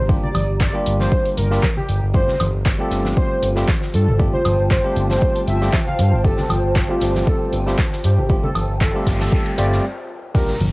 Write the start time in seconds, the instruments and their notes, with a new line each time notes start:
Already playing: analog synth bass G1, ambient pad G4 D5 A#5, soft synth lead C5
0.09 tine electric piano G3 A#3 D4 F4 G4, kick, tambourine
0.23 soft synth lead D5, low conga
0.35 analog synth bass G1, open hi-hat, tambourine, high conga, high woodblock
0.49 analog synth bass G1
0.60 soft synth lead D5, kick, snare, clap, tambourine
0.73 tine electric piano G3 A#3 D4 F4 G4
0.86 analog synth bass G1, open hi-hat, tambourine
1.00 soft synth lead C5, snare, high conga
1.12 kick, tambourine
1.25 open hi-hat
1.37 analog synth bass G1, soft synth lead A#4, open hi-hat, tambourine, low conga
1.51 tine electric piano G3 A#3 D4 F4 G4, snare
1.63 kick, snare, clap, tambourine, high conga
1.77 soft synth lead G4, low conga
1.89 analog synth bass G1, open hi-hat, tambourine
2.02 analog synth bass G1
2.14 tine electric piano G3 A3 C4 F4 G4, ambient pad F4, soft synth lead C5, kick, tambourine
2.28 snare, low conga
2.40 analog synth bass G1, open hi-hat, tambourine, high conga, high woodblock
2.54 analog synth bass G1
2.65 ambient pad C5, kick, snare, clap, tambourine
2.78 tine electric piano G3 A3 C4 F4 G4, soft synth lead A4
2.91 analog synth bass G1, snare, open hi-hat, tambourine
3.01 ambient pad G5 A5
3.05 snare, high conga
3.16 soft synth lead C5, kick, tambourine
3.42 analog synth bass G1, open hi-hat, tambourine
3.56 tine electric piano G3 A3 C4 F4 G4, snare
3.67 kick, snare, clap, tambourine, high conga
3.82 snare
3.94 analog synth bass G2, soft synth lead A4, open hi-hat, tambourine
4.08 analog synth bass G1, low conga
4.19 tine electric piano G3 A3 C4 F4 G4, kick, tambourine
4.33 soft synth lead C5, low conga
4.45 analog synth bass G1, open hi-hat, tambourine, high conga, high woodblock
4.59 analog synth bass G1
4.71 soft synth lead C5, kick, snare, clap, tambourine
4.83 tine electric piano G3 A3 C4 F4 G4
4.96 analog synth bass G1, open hi-hat, tambourine
5.10 soft synth lead C5, snare, high conga
5.21 kick, tambourine
5.36 open hi-hat
5.47 analog synth bass G1, soft synth lead E5, open hi-hat, tambourine
5.61 tine electric piano G3 A3 C4 F4 G4, snare
5.73 kick, snare, clap, tambourine, high conga
5.87 soft synth lead F5, low conga
5.99 analog synth bass G2, open hi-hat, tambourine
6.13 analog synth bass G1
6.24 tine electric piano G3 A3 C4 F4 G4, soft synth lead A4, kick, tambourine
6.37 snare, low conga
6.49 analog synth bass G1, open hi-hat, tambourine, high conga, high woodblock
6.64 analog synth bass G1
6.76 kick, snare, clap, tambourine
6.88 tine electric piano G3 A3 C4 F4 G4, soft synth lead F4
7.00 analog synth bass G1, snare, open hi-hat, tambourine
7.15 snare, high conga
7.27 soft synth lead A4, kick, tambourine
7.52 analog synth bass G1, open hi-hat, tambourine
7.66 tine electric piano G3 A3 C4 F4 G4, snare
7.78 kick, snare, clap, tambourine, high conga
7.92 snare
8.04 analog synth bass G2, soft synth lead G4, open hi-hat, tambourine
8.18 analog synth bass G1, low conga
8.29 tine electric piano G3 A3 C4 F4 G4, kick, tambourine, noise sweep
8.43 soft synth lead A4, low conga
8.55 analog synth bass G1, open hi-hat, tambourine, high conga, high woodblock
8.69 analog synth bass G1
8.81 soft synth lead A4, kick, snare, clap, tambourine
8.93 tine electric piano G3 A3 C4 F4 G4
9.06 analog synth bass G1, kick, snare, open hi-hat, tambourine
9.20 soft synth lead A4, snare, high conga
9.32 kick, tambourine
9.46 open hi-hat
9.57 analog synth bass G1, tine electric piano G3 A3 C4 F4 G4, soft synth lead D5, open hi-hat, tambourine
9.72 snare
10.34 tine electric piano G3 A#3 D4 F4 G4, ambient pad G4, soft synth lead A#4, kick, crash, tambourine, impact, shaker
10.48 snare, shaker
10.60 analog synth bass G1, open hi-hat, tambourine, high conga, low conga, shaker